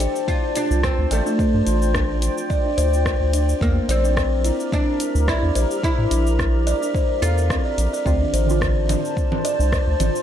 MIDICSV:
0, 0, Header, 1, 7, 480
1, 0, Start_track
1, 0, Key_signature, -1, "minor"
1, 0, Tempo, 555556
1, 1202, Time_signature, 4, 2, 24, 8
1, 8834, End_track
2, 0, Start_track
2, 0, Title_t, "Ambient pad"
2, 0, Program_c, 0, 92
2, 0, Note_on_c, 0, 65, 76
2, 0, Note_on_c, 0, 72, 67
2, 0, Note_on_c, 0, 74, 69
2, 0, Note_on_c, 0, 81, 80
2, 1181, Note_off_c, 0, 81, 0
2, 1205, Note_on_c, 0, 79, 87
2, 3086, Note_off_c, 0, 65, 0
2, 3086, Note_off_c, 0, 74, 0
2, 3087, Note_off_c, 0, 72, 0
2, 3104, Note_off_c, 0, 79, 0
2, 3119, Note_on_c, 0, 67, 69
2, 3122, Note_on_c, 0, 70, 66
2, 3122, Note_on_c, 0, 76, 69
2, 3123, Note_on_c, 0, 82, 80
2, 6926, Note_off_c, 0, 67, 0
2, 6927, Note_off_c, 0, 76, 0
2, 6928, Note_off_c, 0, 70, 0
2, 6928, Note_off_c, 0, 82, 0
2, 6960, Note_on_c, 0, 74, 68
2, 6962, Note_on_c, 0, 81, 87
2, 6963, Note_on_c, 0, 72, 70
2, 6964, Note_on_c, 0, 65, 72
2, 8834, Note_off_c, 0, 65, 0
2, 8834, Note_off_c, 0, 72, 0
2, 8834, Note_off_c, 0, 74, 0
2, 8834, Note_off_c, 0, 81, 0
2, 8834, End_track
3, 0, Start_track
3, 0, Title_t, "Kalimba"
3, 0, Program_c, 1, 108
3, 0, Note_on_c, 1, 72, 89
3, 124, Note_off_c, 1, 72, 0
3, 243, Note_on_c, 1, 65, 78
3, 366, Note_off_c, 1, 65, 0
3, 480, Note_on_c, 1, 62, 65
3, 950, Note_off_c, 1, 62, 0
3, 960, Note_on_c, 1, 74, 89
3, 1085, Note_off_c, 1, 74, 0
3, 1090, Note_on_c, 1, 62, 75
3, 1190, Note_off_c, 1, 62, 0
3, 1200, Note_on_c, 1, 72, 96
3, 1324, Note_off_c, 1, 72, 0
3, 1440, Note_on_c, 1, 65, 65
3, 1565, Note_off_c, 1, 65, 0
3, 1679, Note_on_c, 1, 62, 74
3, 2150, Note_off_c, 1, 62, 0
3, 2158, Note_on_c, 1, 74, 99
3, 2284, Note_off_c, 1, 74, 0
3, 2289, Note_on_c, 1, 62, 74
3, 2390, Note_off_c, 1, 62, 0
3, 2399, Note_on_c, 1, 72, 98
3, 2524, Note_off_c, 1, 72, 0
3, 2639, Note_on_c, 1, 65, 72
3, 2764, Note_off_c, 1, 65, 0
3, 2881, Note_on_c, 1, 62, 72
3, 3121, Note_off_c, 1, 62, 0
3, 3360, Note_on_c, 1, 74, 89
3, 3485, Note_off_c, 1, 74, 0
3, 3489, Note_on_c, 1, 62, 68
3, 3590, Note_off_c, 1, 62, 0
3, 3601, Note_on_c, 1, 72, 94
3, 3725, Note_off_c, 1, 72, 0
3, 3841, Note_on_c, 1, 64, 72
3, 3965, Note_off_c, 1, 64, 0
3, 4081, Note_on_c, 1, 62, 74
3, 4551, Note_off_c, 1, 62, 0
3, 4560, Note_on_c, 1, 74, 95
3, 4684, Note_off_c, 1, 74, 0
3, 4689, Note_on_c, 1, 62, 67
3, 4790, Note_off_c, 1, 62, 0
3, 4799, Note_on_c, 1, 72, 95
3, 4924, Note_off_c, 1, 72, 0
3, 5040, Note_on_c, 1, 64, 74
3, 5165, Note_off_c, 1, 64, 0
3, 5281, Note_on_c, 1, 62, 69
3, 5751, Note_off_c, 1, 62, 0
3, 5761, Note_on_c, 1, 74, 94
3, 5885, Note_off_c, 1, 74, 0
3, 5891, Note_on_c, 1, 62, 69
3, 5991, Note_off_c, 1, 62, 0
3, 6003, Note_on_c, 1, 72, 91
3, 6126, Note_off_c, 1, 72, 0
3, 6242, Note_on_c, 1, 69, 66
3, 6359, Note_off_c, 1, 69, 0
3, 6482, Note_on_c, 1, 60, 93
3, 6606, Note_off_c, 1, 60, 0
3, 6610, Note_on_c, 1, 74, 69
3, 6710, Note_off_c, 1, 74, 0
3, 6853, Note_on_c, 1, 74, 79
3, 6953, Note_off_c, 1, 74, 0
3, 6963, Note_on_c, 1, 74, 99
3, 7086, Note_off_c, 1, 74, 0
3, 7094, Note_on_c, 1, 62, 77
3, 7192, Note_off_c, 1, 62, 0
3, 7203, Note_on_c, 1, 72, 86
3, 7326, Note_off_c, 1, 72, 0
3, 7444, Note_on_c, 1, 65, 74
3, 7566, Note_off_c, 1, 65, 0
3, 7681, Note_on_c, 1, 62, 67
3, 8151, Note_off_c, 1, 62, 0
3, 8162, Note_on_c, 1, 74, 94
3, 8285, Note_off_c, 1, 74, 0
3, 8294, Note_on_c, 1, 62, 69
3, 8392, Note_off_c, 1, 62, 0
3, 8400, Note_on_c, 1, 72, 93
3, 8525, Note_off_c, 1, 72, 0
3, 8642, Note_on_c, 1, 65, 68
3, 8766, Note_off_c, 1, 65, 0
3, 8834, End_track
4, 0, Start_track
4, 0, Title_t, "Oud"
4, 0, Program_c, 2, 24
4, 0, Note_on_c, 2, 67, 90
4, 240, Note_off_c, 2, 67, 0
4, 243, Note_on_c, 2, 65, 88
4, 486, Note_off_c, 2, 65, 0
4, 489, Note_on_c, 2, 62, 83
4, 722, Note_off_c, 2, 62, 0
4, 726, Note_on_c, 2, 60, 81
4, 971, Note_off_c, 2, 60, 0
4, 972, Note_on_c, 2, 57, 80
4, 1653, Note_off_c, 2, 57, 0
4, 3131, Note_on_c, 2, 58, 86
4, 3369, Note_off_c, 2, 58, 0
4, 3372, Note_on_c, 2, 60, 87
4, 4090, Note_on_c, 2, 62, 87
4, 4109, Note_off_c, 2, 60, 0
4, 4567, Note_off_c, 2, 62, 0
4, 4570, Note_on_c, 2, 64, 92
4, 5037, Note_off_c, 2, 64, 0
4, 5047, Note_on_c, 2, 64, 103
4, 6236, Note_off_c, 2, 64, 0
4, 6239, Note_on_c, 2, 65, 89
4, 6926, Note_off_c, 2, 65, 0
4, 8834, End_track
5, 0, Start_track
5, 0, Title_t, "Synth stab"
5, 0, Program_c, 3, 62
5, 6953, Note_on_c, 3, 50, 94
5, 6963, Note_on_c, 3, 60, 91
5, 6971, Note_on_c, 3, 65, 106
5, 7114, Control_c, 3, 64, 127
5, 7296, Note_off_c, 3, 50, 0
5, 7301, Note_off_c, 3, 60, 0
5, 7305, Note_off_c, 3, 65, 0
5, 7312, Note_on_c, 3, 50, 96
5, 7329, Note_on_c, 3, 60, 82
5, 7348, Note_on_c, 3, 65, 101
5, 8834, Note_off_c, 3, 50, 0
5, 8834, Note_off_c, 3, 60, 0
5, 8834, Note_off_c, 3, 65, 0
5, 8834, End_track
6, 0, Start_track
6, 0, Title_t, "Analog synth bass"
6, 0, Program_c, 4, 38
6, 611, Note_on_c, 4, 36, 96
6, 762, Note_off_c, 4, 36, 0
6, 852, Note_on_c, 4, 38, 99
6, 924, Note_off_c, 4, 38, 0
6, 960, Note_on_c, 4, 33, 96
6, 1046, Note_off_c, 4, 33, 0
6, 1332, Note_on_c, 4, 43, 88
6, 1404, Note_off_c, 4, 43, 0
6, 1441, Note_on_c, 4, 33, 92
6, 1980, Note_off_c, 4, 33, 0
6, 2400, Note_on_c, 4, 38, 84
6, 2699, Note_off_c, 4, 38, 0
6, 2768, Note_on_c, 4, 38, 81
6, 3060, Note_off_c, 4, 38, 0
6, 3120, Note_on_c, 4, 40, 99
6, 3286, Note_off_c, 4, 40, 0
6, 3356, Note_on_c, 4, 34, 97
6, 3898, Note_off_c, 4, 34, 0
6, 4450, Note_on_c, 4, 38, 97
6, 4602, Note_off_c, 4, 38, 0
6, 4690, Note_on_c, 4, 40, 96
6, 4763, Note_off_c, 4, 40, 0
6, 4801, Note_on_c, 4, 34, 91
6, 4887, Note_off_c, 4, 34, 0
6, 5171, Note_on_c, 4, 45, 85
6, 5244, Note_off_c, 4, 45, 0
6, 5280, Note_on_c, 4, 34, 89
6, 5820, Note_off_c, 4, 34, 0
6, 6239, Note_on_c, 4, 40, 82
6, 6539, Note_off_c, 4, 40, 0
6, 6721, Note_on_c, 4, 34, 77
6, 6807, Note_off_c, 4, 34, 0
6, 6962, Note_on_c, 4, 38, 96
6, 7126, Note_off_c, 4, 38, 0
6, 7199, Note_on_c, 4, 33, 87
6, 7739, Note_off_c, 4, 33, 0
6, 8290, Note_on_c, 4, 36, 92
6, 8442, Note_off_c, 4, 36, 0
6, 8531, Note_on_c, 4, 38, 100
6, 8604, Note_off_c, 4, 38, 0
6, 8639, Note_on_c, 4, 33, 90
6, 8726, Note_off_c, 4, 33, 0
6, 8834, End_track
7, 0, Start_track
7, 0, Title_t, "Drums"
7, 1, Note_on_c, 9, 42, 84
7, 6, Note_on_c, 9, 69, 75
7, 88, Note_off_c, 9, 42, 0
7, 92, Note_off_c, 9, 69, 0
7, 136, Note_on_c, 9, 69, 42
7, 222, Note_off_c, 9, 69, 0
7, 241, Note_on_c, 9, 36, 96
7, 247, Note_on_c, 9, 69, 28
7, 328, Note_off_c, 9, 36, 0
7, 333, Note_off_c, 9, 69, 0
7, 480, Note_on_c, 9, 42, 92
7, 484, Note_on_c, 9, 69, 78
7, 566, Note_off_c, 9, 42, 0
7, 571, Note_off_c, 9, 69, 0
7, 616, Note_on_c, 9, 69, 41
7, 702, Note_off_c, 9, 69, 0
7, 721, Note_on_c, 9, 37, 100
7, 722, Note_on_c, 9, 36, 97
7, 726, Note_on_c, 9, 69, 33
7, 807, Note_off_c, 9, 37, 0
7, 808, Note_off_c, 9, 36, 0
7, 812, Note_off_c, 9, 69, 0
7, 959, Note_on_c, 9, 42, 93
7, 963, Note_on_c, 9, 69, 73
7, 1045, Note_off_c, 9, 42, 0
7, 1050, Note_off_c, 9, 69, 0
7, 1093, Note_on_c, 9, 69, 42
7, 1180, Note_off_c, 9, 69, 0
7, 1201, Note_on_c, 9, 36, 102
7, 1205, Note_on_c, 9, 69, 32
7, 1287, Note_off_c, 9, 36, 0
7, 1291, Note_off_c, 9, 69, 0
7, 1439, Note_on_c, 9, 42, 77
7, 1444, Note_on_c, 9, 69, 70
7, 1525, Note_off_c, 9, 42, 0
7, 1530, Note_off_c, 9, 69, 0
7, 1574, Note_on_c, 9, 69, 43
7, 1660, Note_off_c, 9, 69, 0
7, 1680, Note_on_c, 9, 36, 93
7, 1681, Note_on_c, 9, 37, 102
7, 1685, Note_on_c, 9, 69, 35
7, 1767, Note_off_c, 9, 36, 0
7, 1767, Note_off_c, 9, 37, 0
7, 1771, Note_off_c, 9, 69, 0
7, 1919, Note_on_c, 9, 42, 82
7, 1924, Note_on_c, 9, 69, 75
7, 2005, Note_off_c, 9, 42, 0
7, 2010, Note_off_c, 9, 69, 0
7, 2055, Note_on_c, 9, 69, 44
7, 2141, Note_off_c, 9, 69, 0
7, 2161, Note_on_c, 9, 36, 94
7, 2164, Note_on_c, 9, 69, 31
7, 2248, Note_off_c, 9, 36, 0
7, 2251, Note_off_c, 9, 69, 0
7, 2401, Note_on_c, 9, 42, 86
7, 2405, Note_on_c, 9, 69, 77
7, 2487, Note_off_c, 9, 42, 0
7, 2492, Note_off_c, 9, 69, 0
7, 2536, Note_on_c, 9, 69, 44
7, 2622, Note_off_c, 9, 69, 0
7, 2641, Note_on_c, 9, 36, 101
7, 2642, Note_on_c, 9, 37, 98
7, 2646, Note_on_c, 9, 69, 36
7, 2727, Note_off_c, 9, 36, 0
7, 2728, Note_off_c, 9, 37, 0
7, 2733, Note_off_c, 9, 69, 0
7, 2881, Note_on_c, 9, 42, 87
7, 2885, Note_on_c, 9, 69, 77
7, 2967, Note_off_c, 9, 42, 0
7, 2972, Note_off_c, 9, 69, 0
7, 3016, Note_on_c, 9, 69, 42
7, 3102, Note_off_c, 9, 69, 0
7, 3121, Note_on_c, 9, 36, 108
7, 3128, Note_on_c, 9, 69, 31
7, 3207, Note_off_c, 9, 36, 0
7, 3214, Note_off_c, 9, 69, 0
7, 3362, Note_on_c, 9, 42, 77
7, 3367, Note_on_c, 9, 69, 69
7, 3449, Note_off_c, 9, 42, 0
7, 3453, Note_off_c, 9, 69, 0
7, 3497, Note_on_c, 9, 69, 44
7, 3584, Note_off_c, 9, 69, 0
7, 3601, Note_on_c, 9, 36, 94
7, 3604, Note_on_c, 9, 37, 104
7, 3609, Note_on_c, 9, 69, 33
7, 3687, Note_off_c, 9, 36, 0
7, 3691, Note_off_c, 9, 37, 0
7, 3695, Note_off_c, 9, 69, 0
7, 3841, Note_on_c, 9, 42, 79
7, 3845, Note_on_c, 9, 69, 75
7, 3927, Note_off_c, 9, 42, 0
7, 3932, Note_off_c, 9, 69, 0
7, 3976, Note_on_c, 9, 69, 42
7, 4062, Note_off_c, 9, 69, 0
7, 4082, Note_on_c, 9, 36, 101
7, 4085, Note_on_c, 9, 69, 31
7, 4168, Note_off_c, 9, 36, 0
7, 4171, Note_off_c, 9, 69, 0
7, 4320, Note_on_c, 9, 42, 87
7, 4324, Note_on_c, 9, 69, 82
7, 4406, Note_off_c, 9, 42, 0
7, 4411, Note_off_c, 9, 69, 0
7, 4455, Note_on_c, 9, 69, 45
7, 4541, Note_off_c, 9, 69, 0
7, 4561, Note_on_c, 9, 36, 99
7, 4563, Note_on_c, 9, 37, 98
7, 4567, Note_on_c, 9, 69, 33
7, 4648, Note_off_c, 9, 36, 0
7, 4649, Note_off_c, 9, 37, 0
7, 4654, Note_off_c, 9, 69, 0
7, 4799, Note_on_c, 9, 42, 88
7, 4803, Note_on_c, 9, 69, 80
7, 4885, Note_off_c, 9, 42, 0
7, 4890, Note_off_c, 9, 69, 0
7, 4933, Note_on_c, 9, 69, 43
7, 5019, Note_off_c, 9, 69, 0
7, 5041, Note_on_c, 9, 36, 100
7, 5046, Note_on_c, 9, 69, 34
7, 5128, Note_off_c, 9, 36, 0
7, 5133, Note_off_c, 9, 69, 0
7, 5281, Note_on_c, 9, 42, 75
7, 5285, Note_on_c, 9, 69, 71
7, 5367, Note_off_c, 9, 42, 0
7, 5371, Note_off_c, 9, 69, 0
7, 5415, Note_on_c, 9, 69, 43
7, 5502, Note_off_c, 9, 69, 0
7, 5521, Note_on_c, 9, 36, 101
7, 5525, Note_on_c, 9, 37, 93
7, 5529, Note_on_c, 9, 69, 34
7, 5607, Note_off_c, 9, 36, 0
7, 5611, Note_off_c, 9, 37, 0
7, 5616, Note_off_c, 9, 69, 0
7, 5762, Note_on_c, 9, 42, 80
7, 5767, Note_on_c, 9, 69, 73
7, 5848, Note_off_c, 9, 42, 0
7, 5853, Note_off_c, 9, 69, 0
7, 5899, Note_on_c, 9, 69, 41
7, 5985, Note_off_c, 9, 69, 0
7, 6001, Note_on_c, 9, 36, 105
7, 6008, Note_on_c, 9, 69, 31
7, 6087, Note_off_c, 9, 36, 0
7, 6095, Note_off_c, 9, 69, 0
7, 6244, Note_on_c, 9, 42, 86
7, 6248, Note_on_c, 9, 69, 79
7, 6330, Note_off_c, 9, 42, 0
7, 6334, Note_off_c, 9, 69, 0
7, 6376, Note_on_c, 9, 69, 43
7, 6462, Note_off_c, 9, 69, 0
7, 6481, Note_on_c, 9, 36, 105
7, 6483, Note_on_c, 9, 37, 96
7, 6487, Note_on_c, 9, 69, 32
7, 6567, Note_off_c, 9, 36, 0
7, 6569, Note_off_c, 9, 37, 0
7, 6573, Note_off_c, 9, 69, 0
7, 6723, Note_on_c, 9, 42, 84
7, 6728, Note_on_c, 9, 69, 79
7, 6809, Note_off_c, 9, 42, 0
7, 6814, Note_off_c, 9, 69, 0
7, 6860, Note_on_c, 9, 69, 44
7, 6946, Note_off_c, 9, 69, 0
7, 6961, Note_on_c, 9, 36, 96
7, 6969, Note_on_c, 9, 69, 32
7, 7048, Note_off_c, 9, 36, 0
7, 7055, Note_off_c, 9, 69, 0
7, 7203, Note_on_c, 9, 42, 74
7, 7207, Note_on_c, 9, 69, 73
7, 7289, Note_off_c, 9, 42, 0
7, 7294, Note_off_c, 9, 69, 0
7, 7340, Note_on_c, 9, 69, 43
7, 7426, Note_off_c, 9, 69, 0
7, 7442, Note_on_c, 9, 36, 91
7, 7446, Note_on_c, 9, 37, 93
7, 7450, Note_on_c, 9, 69, 32
7, 7528, Note_off_c, 9, 36, 0
7, 7532, Note_off_c, 9, 37, 0
7, 7537, Note_off_c, 9, 69, 0
7, 7684, Note_on_c, 9, 42, 77
7, 7684, Note_on_c, 9, 64, 72
7, 7688, Note_on_c, 9, 69, 72
7, 7770, Note_off_c, 9, 42, 0
7, 7770, Note_off_c, 9, 64, 0
7, 7774, Note_off_c, 9, 69, 0
7, 7820, Note_on_c, 9, 69, 42
7, 7906, Note_off_c, 9, 69, 0
7, 7921, Note_on_c, 9, 36, 93
7, 7928, Note_on_c, 9, 69, 30
7, 8008, Note_off_c, 9, 36, 0
7, 8014, Note_off_c, 9, 69, 0
7, 8051, Note_on_c, 9, 64, 72
7, 8138, Note_off_c, 9, 64, 0
7, 8163, Note_on_c, 9, 42, 81
7, 8167, Note_on_c, 9, 69, 78
7, 8249, Note_off_c, 9, 42, 0
7, 8253, Note_off_c, 9, 69, 0
7, 8297, Note_on_c, 9, 69, 45
7, 8384, Note_off_c, 9, 69, 0
7, 8402, Note_on_c, 9, 36, 102
7, 8403, Note_on_c, 9, 37, 92
7, 8407, Note_on_c, 9, 69, 35
7, 8488, Note_off_c, 9, 36, 0
7, 8489, Note_off_c, 9, 37, 0
7, 8493, Note_off_c, 9, 69, 0
7, 8640, Note_on_c, 9, 42, 82
7, 8640, Note_on_c, 9, 64, 58
7, 8644, Note_on_c, 9, 69, 76
7, 8726, Note_off_c, 9, 42, 0
7, 8726, Note_off_c, 9, 64, 0
7, 8731, Note_off_c, 9, 69, 0
7, 8774, Note_on_c, 9, 69, 42
7, 8834, Note_off_c, 9, 69, 0
7, 8834, End_track
0, 0, End_of_file